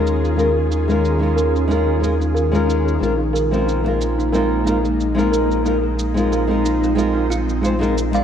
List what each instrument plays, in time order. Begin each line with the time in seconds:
Already playing: sub bass D#2, ambient pad D#3 C#4 F4 G#4, nylon-string guitar G#3 C#4 D#4 F4 A#4
0.07 cabasa
0.23 kalimba D#4, cabasa
0.36 nylon-string guitar G#3 C#4 D#4 F4 A#4, kalimba A#4, cabasa
0.71 kalimba D#4, cabasa
0.88 nylon-string guitar G#3 C#4 D#4 F4 A#4, kalimba G#4, cabasa
1.05 cabasa
1.19 nylon-string guitar G#3 C#4 F4 A#4, kalimba D#4
1.36 kalimba A#4, cabasa
1.56 cabasa
1.68 nylon-string guitar G#3 C#4 F4 A#4, kalimba D#4, cabasa
1.87 kalimba G#4
2.00 nylon-string guitar G#3 C#4 F4, cabasa
2.04 nylon-string guitar A#4
2.20 kalimba D#4, cabasa
2.35 kalimba A#4, cabasa
2.52 nylon-string guitar G#3 C#4 D#4 F4 A#4, cabasa
2.67 kalimba D#4, cabasa
2.85 kalimba G#4, cabasa
2.99 sub bass A#1, nylon-string guitar G#3 C4 F4, ambient pad G#3 A#3
3.03 ambient pad D#4, nylon-string guitar A#4, cabasa
3.18 kalimba D#4
3.33 kalimba A#4, cabasa
3.51 nylon-string guitar G#3 C4 D#4 F4 A#4, cabasa
3.66 kalimba D#4, cabasa
3.84 nylon-string guitar G#3 C4 F4, kalimba G#4
3.88 nylon-string guitar A#4
4.01 cabasa
4.18 kalimba D#4, cabasa
4.32 nylon-string guitar G#3 C4 D#4 F4 A#4, kalimba A#4, cabasa
4.64 nylon-string guitar G#3 C4 D#4 F4, kalimba D#4, cabasa
4.68 nylon-string guitar A#4
4.84 kalimba G#4, cabasa
5.00 cabasa
5.15 nylon-string guitar G#3 C4 D#4 F4 A#4, kalimba D#4
5.19 cabasa
5.32 kalimba A#4, cabasa
5.51 cabasa
5.64 nylon-string guitar G#3 C4 D#4 F4 A#4, ambient pad C4, kalimba D#4, cabasa
5.83 kalimba G#4
5.99 cabasa
6.14 nylon-string guitar G#3 C4 F4, kalimba D#4, cabasa
6.18 nylon-string guitar A#4
6.32 kalimba A#4, cabasa
6.47 nylon-string guitar G#3 C4 D#4 F4 A#4
6.64 kalimba D#4, cabasa
6.84 kalimba G#4, cabasa
6.95 nylon-string guitar G#3 C4 D#4 F4 A#4, cabasa
7.15 kalimba D#4
7.30 kalimba F4, cabasa
7.49 cabasa
7.61 nylon-string guitar G#3 C4 F4, kalimba F4, cabasa
7.65 nylon-string guitar C5
7.79 nylon-string guitar G#3 C4 D#4 F4 A#4, kalimba G#4
7.83 cabasa
7.98 cabasa
8.11 nylon-string guitar G#3 C4 D#4 F4 D5, kalimba F5, cabasa